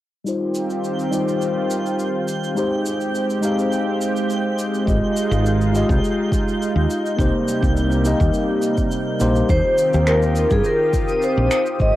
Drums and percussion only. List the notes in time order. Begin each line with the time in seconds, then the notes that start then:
0.27 cabasa
0.55 cabasa
0.70 cabasa
0.84 cabasa
0.99 cabasa
1.13 cabasa
1.28 cabasa
1.42 cabasa
1.71 cabasa
1.86 cabasa
1.99 cabasa
2.28 cabasa
2.44 cabasa
2.57 cabasa
2.86 cabasa
3.01 cabasa
3.15 cabasa
3.30 cabasa
3.43 cabasa
3.59 cabasa
3.72 cabasa
4.01 cabasa
4.16 cabasa
4.30 cabasa
4.59 cabasa
4.74 cabasa
4.87 kick, cabasa
5.17 cabasa
5.32 cabasa
5.46 cabasa
5.61 cabasa
5.75 cabasa
5.89 kick, cabasa
6.04 cabasa
6.32 kick, cabasa
6.48 cabasa
6.62 cabasa
6.90 cabasa
7.06 cabasa
7.18 kick, cabasa
7.48 cabasa
7.62 kick, cabasa
7.77 cabasa
7.92 cabasa
8.05 cabasa
8.20 kick, cabasa
8.34 cabasa
8.62 cabasa
8.77 kick, cabasa
8.91 cabasa
9.20 cabasa
9.35 cabasa
9.49 kick, cabasa
9.78 cabasa
9.93 cabasa
10.07 finger snap, cabasa
10.22 cabasa
10.36 cabasa
10.51 kick, cabasa
10.64 cabasa
10.93 kick, cabasa
11.08 cabasa
11.22 cabasa
11.51 finger snap, cabasa
11.66 cabasa
11.79 kick, cabasa